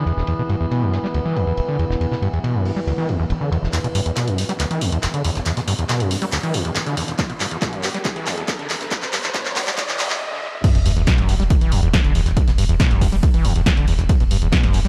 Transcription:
Already playing: E3 B3
0.06 E2, ride
0.17 E1, snare
0.27 E2, ride
0.39 B2
0.49 G2, ride
0.61 E2
0.71 B2, ride
0.82 F#2
0.93 G2, snare, ride
1.04 G3, snare
1.14 D2, ride
1.25 E3
1.36 E2, ride
1.47 E2
1.57 E1, ride
1.69 D3
1.79 E2, ride
1.90 E1, snare
2.01 E2, ride
2.12 B2, snare
2.22 G2, ride
2.33 E2, ride
2.44 B2, ride
2.55 F#2
2.65 G2, open hi-hat
2.76 G3
2.87 D2, ride
2.98 E3
3.09 E2, ride
3.20 E2
3.30 E1, ride
3.41 D3
3.52 E2, ride
3.63 E1, snare
3.73 E2, clap, closed hi-hat, ride, riser
3.84 B2, closed hi-hat
3.95 G2, open hi-hat, ride
4.06 E2, closed hi-hat
4.16 B2, snare, clap, closed hi-hat, ride
4.28 F#2, closed hi-hat
4.38 G2, snare, open hi-hat, ride
4.49 G3, snare, closed hi-hat
4.60 D2, clap, closed hi-hat, ride
4.71 E3, closed hi-hat
4.81 E2, open hi-hat, ride
4.92 E2, closed hi-hat
5.03 E1, snare, clap, closed hi-hat, ride
5.14 D3, closed hi-hat
5.24 E2, open hi-hat, ride
5.35 E1, snare, closed hi-hat
5.45 E2, clap, closed hi-hat, ride
5.57 B2, snare, closed hi-hat
5.68 G2, open hi-hat, ride
5.79 E2, closed hi-hat, ride
5.89 B2, snare, clap, closed hi-hat, ride
6.00 F#2, closed hi-hat
6.11 G2, open hi-hat
6.22 G3, closed hi-hat
6.32 D2, clap, closed hi-hat, ride
6.43 E3, closed hi-hat
6.54 E2, open hi-hat, ride
6.65 E2, closed hi-hat
6.75 E1, snare, clap, closed hi-hat, ride
6.87 D3, closed hi-hat
6.97 E2, open hi-hat, ride
7.08 E1, snare, closed hi-hat
7.19 E2, kick, clap, closed hi-hat, ride
7.30 B2, closed hi-hat
7.40 G2, clap, open hi-hat, ride
7.51 E2, closed hi-hat
7.62 B2, kick, snare, clap, closed hi-hat, ride
7.73 F#2, closed hi-hat
7.83 G2, snare, clap, open hi-hat, ride
7.94 G3, snare, closed hi-hat
8.05 D2, kick, clap, closed hi-hat, ride
8.16 E3, closed hi-hat
8.27 E2, clap, open hi-hat, ride
8.38 E2, closed hi-hat
8.48 E1, kick, snare, clap, closed hi-hat, ride
8.59 D3, closed hi-hat
8.70 E2, clap, open hi-hat, ride
8.81 E1, snare, closed hi-hat
8.91 E2, kick, clap, closed hi-hat, ride
9.02 B2, snare, clap, closed hi-hat
9.13 G2, clap, open hi-hat, ride
9.24 E2, clap, closed hi-hat, ride
9.34 B2, kick, snare, clap, closed hi-hat, ride
9.46 F#2, clap, closed hi-hat
9.56 G2, kick, clap, open hi-hat
9.67 G3, clap, closed hi-hat
9.78 D2, kick, clap, closed hi-hat, ride
9.89 E3, clap, closed hi-hat
9.99 E2, clap, open hi-hat, ride
10.10 E2, clap, closed hi-hat
10.21 E1
10.32 D3
10.42 E2
10.53 E1
10.64 E2, kick, closed hi-hat, crash, ride, sub drop
10.75 E1 B2, closed hi-hat
10.86 E1 G2, open hi-hat, ride
10.97 E1 E2, closed hi-hat
11.07 B2, kick, snare, closed hi-hat, ride
11.18 E1 F#2, snare, closed hi-hat
11.29 E1 G2, snare, open hi-hat, ride
11.40 E1 G3, snare, closed hi-hat
11.50 D2, kick, closed hi-hat, ride
11.61 E1 E3, closed hi-hat
11.72 E1 E2, open hi-hat, ride
11.83 E1 E2, closed hi-hat
11.93 E1, kick, snare, closed hi-hat, ride
12.04 E1 D3, closed hi-hat
12.15 E1 E2, open hi-hat, ride
12.26 E1, snare, closed hi-hat
12.37 E2, kick, closed hi-hat, ride
12.48 E1 B2, snare, closed hi-hat
12.58 E1 G2, open hi-hat, ride
12.69 E1 E2, closed hi-hat, ride
12.80 B2, kick, snare, closed hi-hat, ride
12.91 E1 F#2, closed hi-hat
13.01 E1 G2, kick, open hi-hat
13.12 E1 G3, closed hi-hat
13.23 D2, kick, closed hi-hat, ride
13.34 E1 E3, closed hi-hat
13.45 E1 E2, open hi-hat, ride
13.56 E1 E2, closed hi-hat
13.66 E1, kick, snare, closed hi-hat, ride
13.77 E1 D3, closed hi-hat
13.87 E1 E2, open hi-hat, ride
13.98 E1, snare, closed hi-hat
14.09 E2, kick, closed hi-hat, ride
14.20 E1 B2, closed hi-hat
14.31 E1 G2, open hi-hat, ride
14.42 E1 E2, closed hi-hat
14.52 B2, kick, snare, closed hi-hat, ride
14.63 E1 F#2, snare, closed hi-hat
14.73 E1 G2, snare, open hi-hat, ride
14.85 E1 G3, snare, closed hi-hat

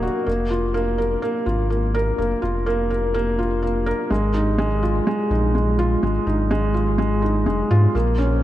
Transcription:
Already playing: A#3 F#4 A#4 D#5
0.03 F#4
0.26 F1 A#3
0.50 F4
0.74 A#3
0.98 A#4
1.22 A#3
1.46 G#1 F4
1.70 A#3
1.95 A#4
2.18 F1 A#3
2.42 F1 F4
2.66 A#3
2.90 A#4
3.14 A#3
3.39 F4
3.62 A#3
3.86 A#4
4.10 G#1 G#3
4.34 D#4
4.58 G#3
4.83 F4
5.07 G#3
5.30 A#1 D#4
5.55 G#3
5.79 F4
6.02 G#1 G#3
6.26 G#1 D#4
6.51 G#3
6.74 F4
6.98 G#3
7.22 D#4
7.46 F1 G#3
7.70 G#2 F4
7.94 A#1 A#3 C#4 F4 C5
8.18 C#4

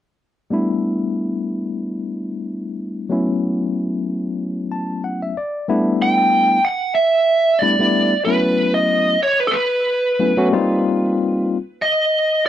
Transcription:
0.50 G3 A3 B3 D4 E4
3.09 F#3 A3 B3 C#4 E4
4.72 A5
5.04 F#5
5.22 E5
5.37 D5
5.68 G3 A3 B3 D4 E4
6.02 G5
6.65 F#5
6.95 E5
7.59 G3 A3 B3 D4 E4 D5
7.79 G3 A3 B3 D4 E4
8.25 F#3 A3 B3 C#4 E4 B4
8.74 D#5
9.23 C#5
9.40 B4
9.47 A4
9.51 B4
10.20 F#3 A3 B3 C#4 E4
10.37 F#3 A3 B3 C#4 F#4
10.52 G3 A#3 C4 D#4 F4
11.82 D#5

